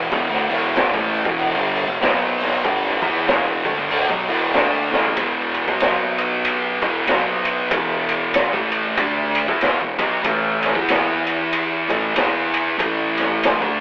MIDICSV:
0, 0, Header, 1, 4, 480
1, 0, Start_track
1, 0, Tempo, 634249
1, 88, Time_signature, 4, 2, 24, 8
1, 10448, End_track
2, 0, Start_track
2, 0, Title_t, "Distorted electric guitar"
2, 0, Program_c, 0, 30
2, 0, Note_on_c, 0, 40, 90
2, 0, Note_on_c, 0, 47, 101
2, 0, Note_on_c, 0, 52, 106
2, 80, Note_off_c, 0, 40, 0
2, 82, Note_off_c, 0, 47, 0
2, 82, Note_off_c, 0, 52, 0
2, 91, Note_on_c, 0, 40, 88
2, 94, Note_on_c, 0, 47, 86
2, 222, Note_off_c, 0, 40, 0
2, 224, Note_off_c, 0, 47, 0
2, 231, Note_on_c, 0, 50, 86
2, 232, Note_on_c, 0, 57, 85
2, 363, Note_off_c, 0, 50, 0
2, 364, Note_off_c, 0, 57, 0
2, 373, Note_on_c, 0, 40, 98
2, 378, Note_on_c, 0, 47, 90
2, 378, Note_on_c, 0, 52, 100
2, 699, Note_off_c, 0, 40, 0
2, 702, Note_off_c, 0, 47, 0
2, 702, Note_off_c, 0, 52, 0
2, 705, Note_on_c, 0, 45, 79
2, 711, Note_on_c, 0, 52, 98
2, 712, Note_on_c, 0, 57, 108
2, 939, Note_off_c, 0, 45, 0
2, 942, Note_off_c, 0, 52, 0
2, 943, Note_off_c, 0, 57, 0
2, 948, Note_on_c, 0, 40, 76
2, 951, Note_on_c, 0, 47, 87
2, 952, Note_on_c, 0, 52, 102
2, 1177, Note_off_c, 0, 40, 0
2, 1179, Note_off_c, 0, 47, 0
2, 1179, Note_off_c, 0, 52, 0
2, 1180, Note_on_c, 0, 43, 86
2, 1182, Note_on_c, 0, 50, 95
2, 1187, Note_on_c, 0, 55, 94
2, 1415, Note_off_c, 0, 43, 0
2, 1417, Note_off_c, 0, 50, 0
2, 1419, Note_off_c, 0, 55, 0
2, 1420, Note_on_c, 0, 40, 71
2, 1423, Note_on_c, 0, 47, 65
2, 1511, Note_off_c, 0, 47, 0
2, 1519, Note_off_c, 0, 40, 0
2, 1520, Note_on_c, 0, 47, 93
2, 1523, Note_on_c, 0, 54, 103
2, 1527, Note_on_c, 0, 59, 109
2, 1993, Note_off_c, 0, 47, 0
2, 1994, Note_off_c, 0, 54, 0
2, 1997, Note_off_c, 0, 59, 0
2, 2004, Note_on_c, 0, 43, 97
2, 2006, Note_on_c, 0, 50, 90
2, 2010, Note_on_c, 0, 55, 93
2, 2277, Note_off_c, 0, 43, 0
2, 2278, Note_off_c, 0, 50, 0
2, 2280, Note_off_c, 0, 55, 0
2, 2285, Note_on_c, 0, 52, 76
2, 2287, Note_on_c, 0, 59, 98
2, 2290, Note_on_c, 0, 64, 93
2, 2473, Note_off_c, 0, 52, 0
2, 2474, Note_off_c, 0, 59, 0
2, 2476, Note_off_c, 0, 64, 0
2, 2476, Note_on_c, 0, 40, 86
2, 2479, Note_on_c, 0, 47, 96
2, 2483, Note_on_c, 0, 52, 96
2, 2752, Note_off_c, 0, 40, 0
2, 2754, Note_off_c, 0, 47, 0
2, 2756, Note_off_c, 0, 52, 0
2, 2757, Note_on_c, 0, 50, 88
2, 2762, Note_on_c, 0, 57, 99
2, 2852, Note_off_c, 0, 50, 0
2, 2854, Note_off_c, 0, 57, 0
2, 2857, Note_on_c, 0, 43, 81
2, 2861, Note_on_c, 0, 50, 93
2, 2943, Note_off_c, 0, 50, 0
2, 2950, Note_off_c, 0, 43, 0
2, 2952, Note_on_c, 0, 50, 97
2, 2957, Note_on_c, 0, 57, 106
2, 3088, Note_off_c, 0, 50, 0
2, 3091, Note_off_c, 0, 57, 0
2, 3100, Note_on_c, 0, 47, 82
2, 3103, Note_on_c, 0, 54, 97
2, 3233, Note_off_c, 0, 47, 0
2, 3234, Note_off_c, 0, 54, 0
2, 3242, Note_on_c, 0, 40, 91
2, 3246, Note_on_c, 0, 47, 95
2, 3246, Note_on_c, 0, 52, 115
2, 3431, Note_off_c, 0, 40, 0
2, 3431, Note_off_c, 0, 47, 0
2, 3433, Note_off_c, 0, 52, 0
2, 3434, Note_on_c, 0, 50, 81
2, 3437, Note_on_c, 0, 57, 89
2, 3440, Note_on_c, 0, 62, 99
2, 3711, Note_off_c, 0, 50, 0
2, 3712, Note_off_c, 0, 57, 0
2, 3714, Note_off_c, 0, 62, 0
2, 3716, Note_on_c, 0, 45, 98
2, 3721, Note_on_c, 0, 52, 84
2, 3724, Note_on_c, 0, 57, 106
2, 3908, Note_off_c, 0, 45, 0
2, 3911, Note_off_c, 0, 52, 0
2, 3912, Note_off_c, 0, 57, 0
2, 3913, Note_on_c, 0, 40, 91
2, 3916, Note_on_c, 0, 47, 94
2, 3921, Note_on_c, 0, 52, 103
2, 4288, Note_off_c, 0, 47, 0
2, 4291, Note_off_c, 0, 40, 0
2, 4295, Note_off_c, 0, 52, 0
2, 4297, Note_on_c, 0, 47, 77
2, 4301, Note_on_c, 0, 54, 82
2, 4304, Note_on_c, 0, 59, 76
2, 5146, Note_off_c, 0, 47, 0
2, 5153, Note_on_c, 0, 40, 96
2, 5154, Note_off_c, 0, 54, 0
2, 5155, Note_off_c, 0, 59, 0
2, 5155, Note_on_c, 0, 47, 98
2, 5159, Note_on_c, 0, 52, 94
2, 5343, Note_off_c, 0, 47, 0
2, 5347, Note_off_c, 0, 40, 0
2, 5350, Note_off_c, 0, 52, 0
2, 5352, Note_on_c, 0, 47, 95
2, 5356, Note_on_c, 0, 54, 97
2, 5359, Note_on_c, 0, 59, 100
2, 5824, Note_off_c, 0, 47, 0
2, 5831, Note_off_c, 0, 54, 0
2, 5831, Note_on_c, 0, 40, 79
2, 5833, Note_off_c, 0, 59, 0
2, 5833, Note_on_c, 0, 47, 80
2, 5838, Note_on_c, 0, 52, 90
2, 6448, Note_off_c, 0, 40, 0
2, 6450, Note_off_c, 0, 47, 0
2, 6452, Note_off_c, 0, 52, 0
2, 6459, Note_on_c, 0, 45, 96
2, 6462, Note_on_c, 0, 52, 89
2, 6464, Note_on_c, 0, 57, 85
2, 6790, Note_off_c, 0, 57, 0
2, 6792, Note_off_c, 0, 45, 0
2, 6794, Note_off_c, 0, 52, 0
2, 6798, Note_on_c, 0, 50, 91
2, 6799, Note_on_c, 0, 57, 95
2, 6804, Note_on_c, 0, 62, 96
2, 7175, Note_off_c, 0, 50, 0
2, 7175, Note_off_c, 0, 57, 0
2, 7178, Note_off_c, 0, 62, 0
2, 7179, Note_on_c, 0, 52, 83
2, 7182, Note_on_c, 0, 59, 94
2, 7185, Note_on_c, 0, 64, 87
2, 7412, Note_off_c, 0, 52, 0
2, 7413, Note_off_c, 0, 59, 0
2, 7415, Note_off_c, 0, 64, 0
2, 7415, Note_on_c, 0, 40, 47
2, 7418, Note_on_c, 0, 47, 58
2, 7548, Note_off_c, 0, 47, 0
2, 7558, Note_on_c, 0, 47, 93
2, 7561, Note_off_c, 0, 40, 0
2, 7561, Note_on_c, 0, 54, 94
2, 7562, Note_on_c, 0, 59, 96
2, 7743, Note_off_c, 0, 47, 0
2, 7746, Note_on_c, 0, 45, 84
2, 7749, Note_off_c, 0, 54, 0
2, 7751, Note_off_c, 0, 59, 0
2, 7752, Note_on_c, 0, 52, 88
2, 7754, Note_on_c, 0, 57, 93
2, 8126, Note_off_c, 0, 52, 0
2, 8130, Note_off_c, 0, 45, 0
2, 8134, Note_off_c, 0, 57, 0
2, 8135, Note_on_c, 0, 52, 78
2, 8138, Note_on_c, 0, 59, 79
2, 8141, Note_on_c, 0, 64, 88
2, 8989, Note_off_c, 0, 52, 0
2, 8995, Note_off_c, 0, 59, 0
2, 8996, Note_on_c, 0, 45, 100
2, 8997, Note_off_c, 0, 64, 0
2, 8998, Note_on_c, 0, 52, 103
2, 9004, Note_on_c, 0, 57, 113
2, 9182, Note_off_c, 0, 52, 0
2, 9188, Note_off_c, 0, 45, 0
2, 9191, Note_on_c, 0, 52, 94
2, 9194, Note_on_c, 0, 59, 101
2, 9195, Note_off_c, 0, 57, 0
2, 9198, Note_on_c, 0, 64, 104
2, 9667, Note_off_c, 0, 52, 0
2, 9672, Note_on_c, 0, 45, 86
2, 9673, Note_off_c, 0, 59, 0
2, 9673, Note_off_c, 0, 64, 0
2, 9676, Note_on_c, 0, 52, 93
2, 9676, Note_on_c, 0, 57, 91
2, 10294, Note_off_c, 0, 45, 0
2, 10296, Note_off_c, 0, 52, 0
2, 10296, Note_off_c, 0, 57, 0
2, 10299, Note_on_c, 0, 50, 85
2, 10305, Note_on_c, 0, 57, 90
2, 10306, Note_on_c, 0, 62, 97
2, 10448, Note_off_c, 0, 50, 0
2, 10448, Note_off_c, 0, 57, 0
2, 10448, Note_off_c, 0, 62, 0
2, 10448, End_track
3, 0, Start_track
3, 0, Title_t, "Fingered electric bass"
3, 0, Program_c, 1, 33
3, 93, Note_on_c, 1, 28, 97
3, 222, Note_off_c, 1, 28, 0
3, 232, Note_on_c, 1, 38, 83
3, 362, Note_off_c, 1, 38, 0
3, 380, Note_on_c, 1, 28, 105
3, 688, Note_off_c, 1, 28, 0
3, 711, Note_on_c, 1, 33, 93
3, 931, Note_off_c, 1, 33, 0
3, 948, Note_on_c, 1, 28, 97
3, 1169, Note_off_c, 1, 28, 0
3, 1195, Note_on_c, 1, 31, 95
3, 1412, Note_off_c, 1, 31, 0
3, 1429, Note_on_c, 1, 28, 92
3, 1517, Note_off_c, 1, 28, 0
3, 1529, Note_on_c, 1, 35, 101
3, 1973, Note_off_c, 1, 35, 0
3, 2005, Note_on_c, 1, 31, 89
3, 2266, Note_off_c, 1, 31, 0
3, 2287, Note_on_c, 1, 40, 104
3, 2467, Note_off_c, 1, 40, 0
3, 2487, Note_on_c, 1, 28, 93
3, 2747, Note_off_c, 1, 28, 0
3, 2765, Note_on_c, 1, 38, 93
3, 2854, Note_off_c, 1, 38, 0
3, 2867, Note_on_c, 1, 31, 101
3, 2955, Note_off_c, 1, 31, 0
3, 2958, Note_on_c, 1, 38, 94
3, 3090, Note_off_c, 1, 38, 0
3, 3103, Note_on_c, 1, 35, 97
3, 3234, Note_off_c, 1, 35, 0
3, 3243, Note_on_c, 1, 28, 94
3, 3424, Note_off_c, 1, 28, 0
3, 3438, Note_on_c, 1, 38, 96
3, 3702, Note_off_c, 1, 38, 0
3, 3720, Note_on_c, 1, 33, 98
3, 3903, Note_off_c, 1, 33, 0
3, 3917, Note_on_c, 1, 28, 93
3, 4272, Note_off_c, 1, 28, 0
3, 4303, Note_on_c, 1, 35, 92
3, 5133, Note_off_c, 1, 35, 0
3, 5163, Note_on_c, 1, 28, 86
3, 5344, Note_off_c, 1, 28, 0
3, 5358, Note_on_c, 1, 35, 83
3, 5808, Note_off_c, 1, 35, 0
3, 5837, Note_on_c, 1, 28, 98
3, 6430, Note_off_c, 1, 28, 0
3, 6456, Note_on_c, 1, 33, 85
3, 6772, Note_off_c, 1, 33, 0
3, 6797, Note_on_c, 1, 38, 101
3, 7153, Note_off_c, 1, 38, 0
3, 7179, Note_on_c, 1, 40, 94
3, 7403, Note_off_c, 1, 40, 0
3, 7418, Note_on_c, 1, 28, 88
3, 7552, Note_off_c, 1, 28, 0
3, 7560, Note_on_c, 1, 35, 92
3, 7744, Note_off_c, 1, 35, 0
3, 7758, Note_on_c, 1, 33, 96
3, 8115, Note_off_c, 1, 33, 0
3, 8141, Note_on_c, 1, 40, 85
3, 8975, Note_off_c, 1, 40, 0
3, 9006, Note_on_c, 1, 33, 90
3, 9189, Note_off_c, 1, 33, 0
3, 9201, Note_on_c, 1, 40, 88
3, 9653, Note_off_c, 1, 40, 0
3, 9683, Note_on_c, 1, 33, 89
3, 10278, Note_off_c, 1, 33, 0
3, 10310, Note_on_c, 1, 38, 84
3, 10448, Note_off_c, 1, 38, 0
3, 10448, End_track
4, 0, Start_track
4, 0, Title_t, "Drums"
4, 90, Note_on_c, 9, 36, 114
4, 91, Note_on_c, 9, 46, 93
4, 166, Note_off_c, 9, 36, 0
4, 166, Note_off_c, 9, 46, 0
4, 244, Note_on_c, 9, 38, 33
4, 320, Note_off_c, 9, 38, 0
4, 377, Note_on_c, 9, 46, 56
4, 452, Note_off_c, 9, 46, 0
4, 571, Note_on_c, 9, 46, 80
4, 582, Note_on_c, 9, 38, 116
4, 647, Note_off_c, 9, 46, 0
4, 657, Note_off_c, 9, 38, 0
4, 710, Note_on_c, 9, 36, 117
4, 786, Note_off_c, 9, 36, 0
4, 850, Note_on_c, 9, 46, 56
4, 925, Note_off_c, 9, 46, 0
4, 949, Note_on_c, 9, 36, 112
4, 1025, Note_off_c, 9, 36, 0
4, 1043, Note_on_c, 9, 46, 84
4, 1119, Note_off_c, 9, 46, 0
4, 1327, Note_on_c, 9, 46, 57
4, 1402, Note_off_c, 9, 46, 0
4, 1526, Note_on_c, 9, 46, 75
4, 1537, Note_on_c, 9, 38, 117
4, 1602, Note_off_c, 9, 46, 0
4, 1613, Note_off_c, 9, 38, 0
4, 1813, Note_on_c, 9, 46, 62
4, 1824, Note_on_c, 9, 38, 37
4, 1889, Note_off_c, 9, 46, 0
4, 1900, Note_off_c, 9, 38, 0
4, 2001, Note_on_c, 9, 46, 93
4, 2003, Note_on_c, 9, 36, 121
4, 2077, Note_off_c, 9, 46, 0
4, 2079, Note_off_c, 9, 36, 0
4, 2159, Note_on_c, 9, 38, 33
4, 2234, Note_off_c, 9, 38, 0
4, 2285, Note_on_c, 9, 36, 104
4, 2285, Note_on_c, 9, 46, 59
4, 2360, Note_off_c, 9, 46, 0
4, 2361, Note_off_c, 9, 36, 0
4, 2473, Note_on_c, 9, 46, 88
4, 2484, Note_on_c, 9, 38, 110
4, 2549, Note_off_c, 9, 46, 0
4, 2560, Note_off_c, 9, 38, 0
4, 2762, Note_on_c, 9, 46, 62
4, 2763, Note_on_c, 9, 36, 108
4, 2837, Note_off_c, 9, 46, 0
4, 2839, Note_off_c, 9, 36, 0
4, 2955, Note_on_c, 9, 46, 93
4, 3031, Note_off_c, 9, 46, 0
4, 3100, Note_on_c, 9, 36, 94
4, 3176, Note_off_c, 9, 36, 0
4, 3238, Note_on_c, 9, 46, 59
4, 3314, Note_off_c, 9, 46, 0
4, 3430, Note_on_c, 9, 46, 86
4, 3441, Note_on_c, 9, 38, 106
4, 3506, Note_off_c, 9, 46, 0
4, 3517, Note_off_c, 9, 38, 0
4, 3727, Note_on_c, 9, 38, 68
4, 3803, Note_off_c, 9, 38, 0
4, 3815, Note_on_c, 9, 43, 90
4, 3891, Note_off_c, 9, 43, 0
4, 3910, Note_on_c, 9, 51, 98
4, 3914, Note_on_c, 9, 36, 114
4, 3986, Note_off_c, 9, 51, 0
4, 3990, Note_off_c, 9, 36, 0
4, 4195, Note_on_c, 9, 51, 58
4, 4270, Note_off_c, 9, 51, 0
4, 4298, Note_on_c, 9, 36, 106
4, 4373, Note_off_c, 9, 36, 0
4, 4391, Note_on_c, 9, 51, 96
4, 4401, Note_on_c, 9, 38, 117
4, 4466, Note_off_c, 9, 51, 0
4, 4477, Note_off_c, 9, 38, 0
4, 4679, Note_on_c, 9, 51, 67
4, 4754, Note_off_c, 9, 51, 0
4, 4878, Note_on_c, 9, 51, 81
4, 4953, Note_off_c, 9, 51, 0
4, 5160, Note_on_c, 9, 36, 108
4, 5161, Note_on_c, 9, 51, 62
4, 5236, Note_off_c, 9, 36, 0
4, 5237, Note_off_c, 9, 51, 0
4, 5352, Note_on_c, 9, 51, 89
4, 5362, Note_on_c, 9, 38, 109
4, 5427, Note_off_c, 9, 51, 0
4, 5438, Note_off_c, 9, 38, 0
4, 5637, Note_on_c, 9, 51, 70
4, 5713, Note_off_c, 9, 51, 0
4, 5836, Note_on_c, 9, 36, 107
4, 5836, Note_on_c, 9, 51, 107
4, 5912, Note_off_c, 9, 36, 0
4, 5912, Note_off_c, 9, 51, 0
4, 6120, Note_on_c, 9, 51, 68
4, 6195, Note_off_c, 9, 51, 0
4, 6310, Note_on_c, 9, 51, 98
4, 6321, Note_on_c, 9, 38, 119
4, 6386, Note_off_c, 9, 51, 0
4, 6396, Note_off_c, 9, 38, 0
4, 6457, Note_on_c, 9, 36, 116
4, 6533, Note_off_c, 9, 36, 0
4, 6596, Note_on_c, 9, 51, 71
4, 6672, Note_off_c, 9, 51, 0
4, 6791, Note_on_c, 9, 51, 95
4, 6794, Note_on_c, 9, 36, 102
4, 6866, Note_off_c, 9, 51, 0
4, 6870, Note_off_c, 9, 36, 0
4, 7074, Note_on_c, 9, 51, 74
4, 7150, Note_off_c, 9, 51, 0
4, 7177, Note_on_c, 9, 36, 100
4, 7253, Note_off_c, 9, 36, 0
4, 7272, Note_on_c, 9, 51, 85
4, 7282, Note_on_c, 9, 38, 103
4, 7348, Note_off_c, 9, 51, 0
4, 7358, Note_off_c, 9, 38, 0
4, 7559, Note_on_c, 9, 36, 110
4, 7559, Note_on_c, 9, 51, 69
4, 7634, Note_off_c, 9, 51, 0
4, 7635, Note_off_c, 9, 36, 0
4, 7751, Note_on_c, 9, 51, 88
4, 7755, Note_on_c, 9, 36, 112
4, 7827, Note_off_c, 9, 51, 0
4, 7831, Note_off_c, 9, 36, 0
4, 8040, Note_on_c, 9, 51, 63
4, 8051, Note_on_c, 9, 38, 29
4, 8116, Note_off_c, 9, 51, 0
4, 8126, Note_off_c, 9, 38, 0
4, 8138, Note_on_c, 9, 36, 110
4, 8214, Note_off_c, 9, 36, 0
4, 8237, Note_on_c, 9, 51, 89
4, 8248, Note_on_c, 9, 38, 113
4, 8313, Note_off_c, 9, 51, 0
4, 8323, Note_off_c, 9, 38, 0
4, 8525, Note_on_c, 9, 51, 67
4, 8601, Note_off_c, 9, 51, 0
4, 8722, Note_on_c, 9, 51, 88
4, 8798, Note_off_c, 9, 51, 0
4, 9004, Note_on_c, 9, 36, 93
4, 9007, Note_on_c, 9, 51, 64
4, 9079, Note_off_c, 9, 36, 0
4, 9082, Note_off_c, 9, 51, 0
4, 9200, Note_on_c, 9, 51, 91
4, 9211, Note_on_c, 9, 38, 97
4, 9276, Note_off_c, 9, 51, 0
4, 9287, Note_off_c, 9, 38, 0
4, 9487, Note_on_c, 9, 51, 67
4, 9563, Note_off_c, 9, 51, 0
4, 9682, Note_on_c, 9, 36, 124
4, 9685, Note_on_c, 9, 51, 100
4, 9758, Note_off_c, 9, 36, 0
4, 9761, Note_off_c, 9, 51, 0
4, 9970, Note_on_c, 9, 51, 65
4, 9980, Note_on_c, 9, 38, 31
4, 10045, Note_off_c, 9, 51, 0
4, 10056, Note_off_c, 9, 38, 0
4, 10165, Note_on_c, 9, 51, 102
4, 10176, Note_on_c, 9, 38, 115
4, 10241, Note_off_c, 9, 51, 0
4, 10252, Note_off_c, 9, 38, 0
4, 10308, Note_on_c, 9, 36, 109
4, 10383, Note_off_c, 9, 36, 0
4, 10448, End_track
0, 0, End_of_file